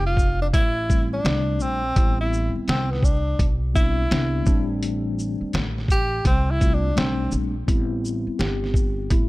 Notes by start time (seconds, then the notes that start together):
Already playing: F1
0.06 F4
0.17 kick, shaker
0.42 D4
0.54 A1 E4, kick, closed hi-hat
0.89 G3 A3 C4 E4, kick, shaker
1.13 D4
1.24 C2 G3 A3 C4 D4, snare, closed hi-hat
1.60 A#1 C4, shaker
1.95 A1 G3 B3 C4 E4, kick, closed hi-hat
2.21 E4
2.33 shaker
2.55 muted upright bass stroke
2.68 C2 C4, snare, closed hi-hat
2.91 B3, snare
3.03 D4, kick, shaker
3.39 B1, kick, closed hi-hat
3.74 G3 B3 C4 D4 E4, kick, shaker
4.10 C2 G3 B3 C4 D4, snare, closed hi-hat
4.46 A1 G3 A3 C4 D4, kick, shaker
4.83 closed hi-hat
5.19 shaker
5.41 muted upright bass stroke
5.53 A1, snare, closed hi-hat
5.78 snare
5.88 G4, kick, closed hi-hat, shaker
6.25 C2 C4, kick, closed hi-hat
6.51 E4
6.60 G3 A3 C4 F4, kick, closed hi-hat, shaker
6.74 D4
6.95 B1 G3 A3 C4 D4, snare, closed hi-hat
7.32 A#1, shaker
7.67 A1 G3 B3 C4 E4, kick, closed hi-hat
8.05 shaker
8.27 muted upright bass stroke
8.39 G1 G4, snare, closed hi-hat
8.64 snare
8.74 kick, shaker
9.10 A1 E4, kick, closed hi-hat